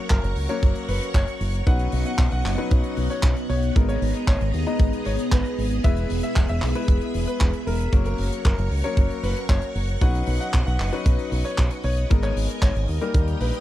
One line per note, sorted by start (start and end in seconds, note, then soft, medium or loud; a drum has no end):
0.00 0.46 F#3 medium
0.00 0.46 A#3 medium
0.00 0.46 C#4 medium
0.00 0.46 A#4 medium
0.00 1.65 A#4 medium
0.00 1.65 C#5 medium
0.00 1.65 F#5 medium
0.00 3.71 C#6 loud
0.10 0.20 F#1 medium
0.10 0.34 A#4 loud
0.10 kick loud
0.10 clap loud
0.10 closed hi-hat medium
0.23 0.33 F#1 loud
0.23 closed hi-hat medium
0.36 0.46 C#2 medium
0.36 open hi-hat loud
0.49 1.63 F#3 medium
0.49 1.63 A#3 medium
0.49 1.63 C#4 medium
0.49 1.63 A#4 loud
0.49 0.73 C#5 medium
0.49 closed hi-hat medium
0.63 0.72 F#1 medium
0.63 kick loud
0.63 closed hi-hat medium
0.75 closed hi-hat medium
0.88 0.98 F#1 medium
0.88 1.04 B4 medium
0.88 open hi-hat loud
1.03 closed hi-hat medium
1.14 1.24 F#1 medium
1.14 1.46 C#5 loud
1.14 kick loud
1.14 clap loud
1.14 closed hi-hat medium
1.28 closed hi-hat medium
1.40 1.60 F#1 medium
1.40 open hi-hat loud
1.53 closed hi-hat medium
1.67 1.86 B1 loud
1.67 2.55 F#3 medium
1.67 7.89 B3 medium
1.67 2.55 C#4 medium
1.67 2.55 D#4 medium
1.67 2.55 B4 medium
1.67 3.73 D#5 medium
1.67 1.91 F#5 loud
1.67 3.73 F#5 medium
1.67 kick loud
1.67 closed hi-hat medium
1.79 closed hi-hat medium
1.92 2.03 B1 loud
1.92 open hi-hat loud
2.05 2.22 F#5 medium
2.05 closed hi-hat medium
2.18 2.29 B1 loud
2.18 kick loud
2.18 clap loud
2.18 closed hi-hat medium
2.32 2.42 B1 loud
2.32 2.56 F#5 medium
2.32 closed hi-hat medium
2.45 2.55 F#1 medium
2.45 clap medium
2.45 open hi-hat medium
2.58 3.72 F#3 medium
2.58 3.72 C#4 medium
2.58 3.72 D#4 medium
2.58 3.72 B4 loud
2.58 closed hi-hat medium
2.71 2.81 B1 loud
2.71 kick loud
2.71 closed hi-hat medium
2.84 closed hi-hat medium
2.97 3.07 B1 medium
2.97 open hi-hat loud
3.10 3.34 C#5 medium
3.10 closed hi-hat medium
3.23 3.33 B1 loud
3.23 kick loud
3.23 clap loud
3.23 closed hi-hat medium
3.36 closed hi-hat medium
3.49 3.69 B1 medium
3.49 3.73 C#5 loud
3.49 open hi-hat loud
3.62 closed hi-hat medium
3.75 3.95 G#1 loud
3.75 4.64 G#3 medium
3.75 4.64 B3 medium
3.75 4.64 D#4 medium
3.75 7.89 G#4 medium
3.75 4.64 A#4 medium
3.75 5.82 D#5 medium
3.75 5.82 A#5 medium
3.75 kick loud
3.75 closed hi-hat medium
3.89 4.13 C#5 loud
3.89 closed hi-hat medium
4.02 4.11 G#1 loud
4.02 open hi-hat loud
4.15 closed hi-hat soft
4.28 4.37 G#1 loud
4.28 4.52 C#5 medium
4.28 kick loud
4.28 clap loud
4.28 closed hi-hat medium
4.41 4.50 G#1 medium
4.41 closed hi-hat medium
4.54 4.64 D#2 medium
4.54 open hi-hat loud
4.67 5.81 G#3 medium
4.67 5.81 B3 medium
4.67 5.81 D#4 medium
4.67 4.91 D#5 medium
4.67 5.81 A#5 loud
4.67 closed hi-hat medium
4.79 4.89 G#1 loud
4.79 kick loud
4.79 closed hi-hat medium
4.93 closed hi-hat medium
5.05 5.16 G#1 medium
5.05 5.22 C#5 medium
5.05 open hi-hat loud
5.19 closed hi-hat medium
5.32 5.42 G#1 medium
5.32 5.64 B4 loud
5.32 kick loud
5.32 clap loud
5.32 closed hi-hat medium
5.45 closed hi-hat medium
5.58 5.78 G#1 medium
5.58 open hi-hat loud
5.71 closed hi-hat medium
5.84 6.04 E1 loud
5.84 6.72 G#3 medium
5.84 6.72 B3 medium
5.84 6.72 E4 medium
5.84 6.72 B4 medium
5.84 6.08 E5 loud
5.84 7.91 E5 medium
5.84 7.91 B5 medium
5.84 kick loud
5.84 closed hi-hat medium
5.97 closed hi-hat medium
6.10 6.20 E1 loud
6.10 open hi-hat loud
6.23 6.39 E5 medium
6.23 closed hi-hat medium
6.36 6.46 E1 loud
6.36 kick loud
6.36 clap loud
6.36 closed hi-hat medium
6.48 6.59 E1 medium
6.48 6.73 E5 medium
6.48 closed hi-hat medium
6.62 6.72 B1 medium
6.62 clap medium
6.62 open hi-hat medium
6.75 7.90 G#3 medium
6.75 7.90 B3 medium
6.75 7.90 E4 medium
6.75 7.90 B4 loud
6.75 closed hi-hat medium
6.88 6.98 E1 loud
6.88 kick loud
6.88 closed hi-hat medium
7.01 closed hi-hat medium
7.14 7.24 E1 medium
7.14 open hi-hat loud
7.27 7.51 B4 loud
7.27 closed hi-hat medium
7.40 7.51 E1 medium
7.40 kick loud
7.40 clap loud
7.40 closed hi-hat medium
7.53 closed hi-hat medium
7.67 7.86 E1 medium
7.67 7.91 A#4 medium
7.67 open hi-hat loud
7.80 closed hi-hat medium
7.93 8.12 F#1 loud
7.93 8.81 F#3 medium
7.93 8.81 A#3 medium
7.93 8.81 C#4 medium
7.93 9.99 A#4 medium
7.93 8.81 A#4 medium
7.93 9.99 C#5 medium
7.93 12.06 F#5 medium
7.93 12.06 C#6 medium
7.93 kick loud
7.93 closed hi-hat medium
8.05 8.30 A#4 medium
8.05 closed hi-hat medium
8.18 8.29 F#1 loud
8.18 open hi-hat loud
8.32 closed hi-hat medium
8.45 8.55 F#1 loud
8.45 8.69 A#4 medium
8.45 kick loud
8.45 clap loud
8.45 closed hi-hat medium
8.58 8.68 F#1 loud
8.58 closed hi-hat medium
8.71 8.81 C#2 medium
8.71 open hi-hat loud
8.84 9.98 F#3 medium
8.84 9.98 A#3 medium
8.84 9.98 C#4 medium
8.84 9.98 A#4 loud
8.84 9.08 C#5 loud
8.84 closed hi-hat medium
8.97 9.07 F#1 loud
8.97 kick loud
8.97 closed hi-hat medium
9.10 closed hi-hat medium
9.23 9.33 F#1 medium
9.23 9.39 B4 medium
9.23 open hi-hat loud
9.37 closed hi-hat medium
9.49 9.59 F#1 medium
9.49 9.81 C#5 loud
9.49 kick loud
9.49 clap loud
9.49 closed hi-hat medium
9.62 closed hi-hat medium
9.75 9.95 F#1 medium
9.75 open hi-hat loud
9.89 closed hi-hat medium
10.01 10.21 B1 loud
10.01 10.90 F#3 medium
10.01 10.90 C#4 medium
10.01 10.90 D#4 medium
10.01 10.90 B4 loud
10.01 12.08 B4 medium
10.01 12.08 D#5 medium
10.01 10.25 F#5 loud
10.01 kick loud
10.01 closed hi-hat medium
10.15 closed hi-hat medium
10.26 10.37 B1 loud
10.26 open hi-hat loud
10.40 10.57 F#5 medium
10.40 closed hi-hat medium
10.54 10.64 B1 loud
10.54 kick loud
10.54 clap loud
10.54 closed hi-hat medium
10.67 10.76 B1 loud
10.67 10.91 F#5 loud
10.67 closed hi-hat medium
10.80 10.90 F#1 medium
10.80 clap medium
10.80 open hi-hat loud
10.93 12.07 F#3 medium
10.93 12.07 C#4 medium
10.93 12.07 D#4 medium
10.93 12.07 B4 loud
10.93 closed hi-hat medium
11.06 11.16 B1 loud
11.06 kick loud
11.06 closed hi-hat medium
11.19 closed hi-hat medium
11.32 11.42 B1 medium
11.32 open hi-hat loud
11.45 11.69 C#5 medium
11.45 closed hi-hat soft
11.58 11.68 B1 medium
11.58 kick loud
11.58 clap loud
11.58 closed hi-hat medium
11.70 closed hi-hat medium
11.84 12.04 B1 medium
11.84 12.08 C#5 loud
11.84 open hi-hat loud
11.97 closed hi-hat medium
12.10 12.30 G#1 loud
12.10 12.98 G#3 medium
12.10 12.98 B3 medium
12.10 12.98 D#4 medium
12.10 13.13 A#4 medium
12.10 12.98 A#4 medium
12.10 13.13 D#5 medium
12.10 13.13 G#5 medium
12.10 kick loud
12.10 closed hi-hat medium
12.23 12.47 C#5 loud
12.23 clap soft
12.23 closed hi-hat medium
12.36 12.46 G#1 loud
12.36 open hi-hat loud
12.49 closed hi-hat medium
12.62 12.72 G#1 loud
12.62 12.86 C#5 loud
12.62 kick loud
12.62 clap loud
12.62 closed hi-hat medium
12.75 12.85 G#1 medium
12.75 closed hi-hat medium
12.88 12.98 D#2 medium
12.88 open hi-hat loud
13.01 13.60 G3 medium
13.01 13.60 A#3 medium
13.01 13.60 D#4 medium
13.01 13.60 A#4 loud
13.01 13.26 A#4 medium
13.01 closed hi-hat medium
13.14 13.34 D#2 loud
13.14 13.60 A#4 medium
13.14 13.60 D#5 medium
13.14 13.60 G5 medium
13.14 13.60 D#6 medium
13.14 kick loud
13.14 closed hi-hat medium
13.28 closed hi-hat medium
13.40 13.50 A#1 medium
13.40 13.57 B4 medium
13.40 open hi-hat loud
13.53 closed hi-hat medium